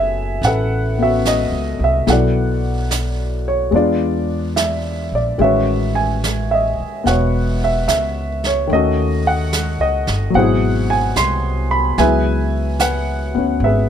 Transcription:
Already playing: F#1 F#3 B3 E4 G#4 A4 B4 E5 G#5
0.41 A1 F#5, brush sweep, snare
0.46 A4 B4
0.99 B3 C#4 E5
1.03 F#4
1.25 D#5, snare, hi-hat pedal
1.51 C#2
1.79 C2
1.84 E5
2.07 B1 F#3 B3 E4 A4 F#5, brush sweep, snare
2.12 A4 D5
2.91 snare, hi-hat pedal
3.48 C#5
3.71 E2 G#3 B3 D4, brush sweep
3.75 F4 G#4 D5
4.56 E5, snare, hi-hat pedal
5.12 A#1 D5
5.38 A1 D#3 G#3 C#4 E5, brush sweep
5.43 F#4 B4 C#5
5.95 G#5
6.24 snare, hi-hat pedal
6.51 D#5 E5
6.80 muted upright bass stroke
7.04 E1 B3 F#4 F#5, brush sweep, snare
7.09 B4 C#5
7.64 E5
7.88 C#2 E5, snare, hi-hat pedal
8.44 C#5, snare
8.67 D#2 D#3 A3
8.71 C#4 F#4 A4 D#5, brush sweep
9.27 F#5
9.53 snare, hi-hat pedal
9.79 C#2 D#5
10.07 G1, snare
10.30 G#1 B2 F#3, brush sweep
10.35 E4 G#4 C5 F#5
10.42 G#4
10.90 G#5
11.16 C2 C6, snare, hi-hat pedal
11.71 B5
11.98 C#2 F#3 B3 E4 G#4 B4 E5 G#5, brush sweep, snare
12.80 B4 F#5, snare, hi-hat pedal
13.35 D2 B3 C#4
13.60 G#1, brush sweep
13.64 G#4 B4 E5

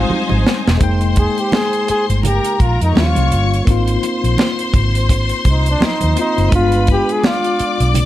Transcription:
Already playing: G3 G#3 C4 D#4 F4 C5 G#5
0.10 muted fingered electric bass stroke, high conga
0.29 G#1, high conga
0.47 snare
0.68 E1, snare
0.77 F1 G#3 A#3 C5 C6, kick, closed hi-hat
0.82 D#4 G5
1.01 closed hi-hat
1.16 G#4, kick, closed hi-hat, muted conga
1.38 G4, closed hi-hat
1.52 G#4, snare, high conga
1.73 closed hi-hat
1.88 G#4, muted fingered electric bass stroke, closed hi-hat
2.09 G1, closed hi-hat
2.23 G4 A#4 A#5, closed hi-hat, muted conga, low conga
2.45 closed hi-hat
2.60 A#1 F4, kick, closed hi-hat, muted conga
2.81 F2 D#4, closed hi-hat
2.94 D#2 G3 A#3 C#4 F4 C#5 C#6, snare, high conga
2.99 F4
3.15 C2, closed hi-hat, high conga
3.32 G1, closed hi-hat
3.53 closed hi-hat
3.65 G#1 A#3 C4 D#4 C5 C6, kick, closed hi-hat
3.71 F4
3.88 closed hi-hat
4.03 closed hi-hat, muted conga
4.24 A#1, closed hi-hat
4.38 snare, high conga
4.59 closed hi-hat
4.73 G#1, kick, closed hi-hat, low conga
4.95 closed hi-hat
5.09 kick, closed hi-hat, muted conga
5.29 closed hi-hat
5.45 C2, kick, closed hi-hat, muted conga
5.50 D#4
5.66 closed hi-hat
5.71 D4
5.80 muted fingered electric bass stroke, snare, high conga
5.85 D#4
6.01 D#2, closed hi-hat, high conga
6.16 A#3 C4 D#4 F4, closed hi-hat
6.20 D#4
6.38 F#1, closed hi-hat
6.49 G1 G#3 B3 B4 B5, kick, closed hi-hat
6.53 D4 F4
6.72 closed hi-hat
6.87 kick, closed hi-hat, muted conga
6.92 G4
7.09 G#4, closed hi-hat
7.23 F4 D5 D6, snare, high conga
7.44 closed hi-hat
7.59 muted fingered electric bass stroke, closed hi-hat
7.80 B1, closed hi-hat
7.94 closed hi-hat, muted conga, low conga

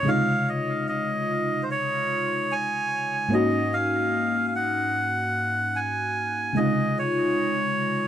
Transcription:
0.03 C3 C#3 G#3
0.08 D#4 F4 F5
0.49 D#5
0.88 D#5
1.63 C5
1.71 C#5
2.52 G#5
3.28 G#2 A#3 C#4
3.33 D#4 F#4 D#5
3.74 F5
4.48 F5
4.55 F#5
5.76 G#5
6.53 C3 C#3 G#3 D#5
6.58 D#4 F4
6.99 C#5

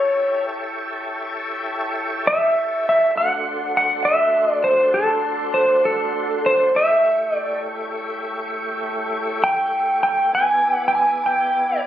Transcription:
Already playing: E4 G4 A4 C#5
2.27 E5
2.89 E5
3.15 A3 D4 F#4 C5 F#5
3.77 F#5
4.05 E5
4.52 D5
4.64 C5
4.94 A4
5.54 C5
5.85 A4
6.46 C5
6.74 A3 E4 G4 C#5 E5
7.36 D5
9.44 G5
10.03 G5
10.32 B3 E4 G#4 D5 G#5
10.76 F#5
10.88 G5
10.95 G#5
11.26 G5

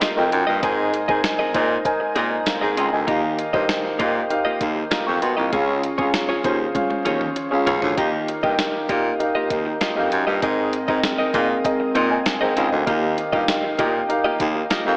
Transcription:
Already playing: D#3 F4 A#4 D#5 G5
0.01 A#3 F4 G4 D#5, snare, closed hi-hat
0.16 F2 F4 A#4 D#5 G5, muted clean electric guitar stroke
0.32 F#2, muted clean electric guitar stroke, closed hi-hat
0.47 G2 A#3 F4 G4 D#5
0.62 G#2 C4 D#4 G#4 A#4 C5 D#5 G#5, kick, closed hi-hat
0.93 muted clean electric guitar stroke, closed hi-hat
1.08 G#2 C4 D#4 G#4 A#4 C5 D#5 G#5, kick
1.24 muted clean electric guitar stroke, snare, closed hi-hat
1.39 C4 G#4 A#4 D#5
1.54 A#2 C4 D#4 G#4 A#4 C5 D#5, kick, closed hi-hat
1.70 muted clean electric guitar stroke
1.85 D#4 A#4 C5 G#5, muted clean electric guitar stroke, kick, closed hi-hat
2.00 muted clean electric guitar stroke
2.15 A#2 C4 G#4 A#4 D#5, closed hi-hat
2.31 muted clean electric guitar stroke
2.46 F5 A#5, muted clean electric guitar stroke, snare, closed hi-hat
2.61 G#2 C4 G#4 A#4 D#5
2.77 C#2 C4 G#4 A#4 D#5 G5 C6, closed hi-hat
2.92 D2 D#5 G#5, muted clean electric guitar stroke
3.07 D#2 D#3 A#3 D#4 F4 G4 A#4 D#5 F5, kick, closed hi-hat
3.23 muted clean electric guitar stroke
3.38 muted clean electric guitar stroke, closed hi-hat
3.53 G2 A#3 D#4 F4 G4 A#4 C5 D#5, kick
3.69 muted clean electric guitar stroke, snare, closed hi-hat
3.84 muted clean electric guitar stroke
3.99 A#2 A#3 D#4 F4 G4 A#4 D#5 F5, kick, closed hi-hat
4.15 muted clean electric guitar stroke
4.30 D#4 G4 A#4 F5, muted clean electric guitar stroke, closed hi-hat
4.45 A#3 F4 G4 D#5
4.60 D#2, muted clean electric guitar stroke, kick, closed hi-hat
4.76 muted clean electric guitar stroke
4.91 A#3 F4 G4 D#5 A#5, snare, closed hi-hat
5.06 F2 G5 C#6, muted clean electric guitar stroke
5.22 B2 G5 C6, muted clean electric guitar stroke, closed hi-hat
5.37 C2 A#3 F4 G4 D#5 F5 A#5
5.52 C#2 C#3 C#4 F4 G#4 C#5 F5, kick, closed hi-hat
5.83 muted clean electric guitar stroke, closed hi-hat
5.98 C#2 C#4 F4 G#4 C#5 F5, kick
6.14 snare, closed hi-hat
6.29 C#4 F4 G#4 C#5
6.44 D#2 C#4 F4 G#4 C5 C#5, kick, closed hi-hat
6.60 muted clean electric guitar stroke
6.74 C#4 F4 G#4 F5, muted clean electric guitar stroke, kick, closed hi-hat, high tom
6.90 muted clean electric guitar stroke, high tom
7.05 D#2 C#4 F4 G#4 C#5, closed hi-hat, mid tom
7.21 muted clean electric guitar stroke, mid tom
7.36 muted clean electric guitar stroke, closed hi-hat
7.51 C#2 C#4 F4 G#4 F5, muted clean electric guitar stroke
7.66 C#2 C#4 F4 G#4 C#5, closed hi-hat, floor tom
7.82 D2 C#4 F4 G#4 C#5, floor tom
7.97 D#2 D#3 A#3 D#4 F4 G4 A#4 D#5 F5, kick, closed hi-hat
8.13 muted clean electric guitar stroke
8.28 muted clean electric guitar stroke, closed hi-hat
8.43 G2 A#3 D#4 F4 G4 A#4 D#5 G5, kick
8.59 muted clean electric guitar stroke, snare, closed hi-hat
8.74 muted clean electric guitar stroke
8.89 A#2 A#3 D#4 F4 G4 A#4 D#5 F5, kick, closed hi-hat
9.04 muted clean electric guitar stroke
9.19 D#4 G4 A#4 F5, muted clean electric guitar stroke, closed hi-hat
9.35 A#3 F4 G4 D#5
9.50 D#2, muted clean electric guitar stroke, kick, closed hi-hat
9.66 muted clean electric guitar stroke
9.81 A#3 F4 G4 D#5, snare, closed hi-hat
9.96 F2 D#4 G4 A#4 F5, muted clean electric guitar stroke
10.12 F#2, muted clean electric guitar stroke, closed hi-hat
10.27 G2 A#3 F4 G4 D#5
10.42 G#2 C4 D#4 G#4 A#4 D#5, kick, closed hi-hat
10.73 muted clean electric guitar stroke, closed hi-hat
10.88 G#2 C4 D#4 G#4 A#4 D#5, kick
11.03 snare, closed hi-hat
11.18 C4 D#4 A#4 D#5
11.34 A#2 C4 D#4 G#4 A#4 D#5 F5, kick, closed hi-hat
11.49 muted clean electric guitar stroke
11.64 C4 G#4 A#4 D#5, muted clean electric guitar stroke, kick, closed hi-hat
11.80 muted clean electric guitar stroke
11.95 A#2 C4 D#4 A#4 D#5 G5 C6, closed hi-hat
12.10 D#5 G#5, muted clean electric guitar stroke
12.26 muted clean electric guitar stroke, snare, closed hi-hat
12.41 G#2 C4 D#4 A#4 C5 D#5 G5
12.56 C#2 C4 D#4 A#4 C5 D#5 F5, closed hi-hat
12.72 D2 A#4 D#5, muted clean electric guitar stroke
12.87 D#2 D#3 A#3 D#4 F4 G4 A#4 D#5 F5, kick, closed hi-hat
13.02 muted clean electric guitar stroke
13.17 muted clean electric guitar stroke, closed hi-hat
13.32 G2 A#3 D#4 F4 G4 A#4 D#5 F5, kick
13.48 snare, closed hi-hat
13.63 muted clean electric guitar stroke
13.78 A#2 A#3 D#4 F4 G4 A#4 D#5 G5, kick, closed hi-hat
13.94 muted clean electric guitar stroke
14.09 D#4 G4 A#4 F5, muted clean electric guitar stroke, closed hi-hat
14.24 A#3 F4 G4 D#5
14.40 D#2, muted clean electric guitar stroke, kick, closed hi-hat
14.55 muted clean electric guitar stroke
14.71 A#3 F4 G4 D#5, snare, closed hi-hat
14.86 F2 D#4 G4 A#4 F5, muted clean electric guitar stroke

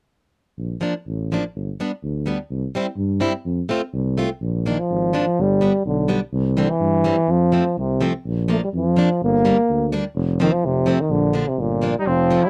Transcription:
0.58 A#1
0.81 F3 A#3 D4
1.07 A1
1.32 F3 A#3 D4
1.55 G1
1.80 G3 B3 D4
2.03 D2
2.26 G3 B3 D4
2.50 C2
2.75 G3 C4 E4
2.97 G2
3.20 G3 C4 E4
3.45 F2
3.69 A3 C4 F4
3.93 C2
4.18 A3 C4 F4
4.41 A#1
4.66 D#3 F3 A#3 D4
4.79 F3
4.90 G#1
5.13 F3 A#3 D4
5.38 G1 G3
5.61 G3 B3 D4
5.85 B1 D3
6.08 G3 B3 D4
6.33 C2
6.57 D3 E3 G3 C4
6.70 E3
6.80 G2
7.04 E3 G3 C4
7.28 F2 F3
7.52 F3 A3 C4
7.77 C2 C3
8.01 F3 A3 C4
8.26 A#1
8.48 F3 A3 A#3 D4
8.64 G3
8.73 F2 F3
8.97 F3 A#3 D4
9.22 G1 A#3
9.45 G3 A#3 D4
9.69 D2
9.92 G3 A#3 D4
10.15 F1
10.40 D#3 F3 A#3 C4
10.52 F3
10.63 F1 C3
10.86 F3 A3 C4
11.01 D#3
11.10 A#1 D3
11.33 F3 A#3 D4
11.48 C3
11.57 G1 A#2
11.82 F3 A#3 D4
11.99 G3 D#4
12.06 F1 F3 C4
12.31 F3 A3 C4
12.43 G3 E4

